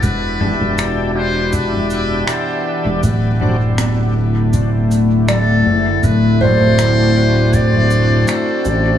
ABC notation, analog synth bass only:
X:1
M:4/4
L:1/16
Q:1/4=80
K:Dmix
V:1 name="Analog synth bass" clef=bass
E,,,3 E,,,8- E,,, z3 E,,, | D,,,12- D,,,2 F,,,2 | D,,,3 D,,,8- D,,, z2 A,,,2 |]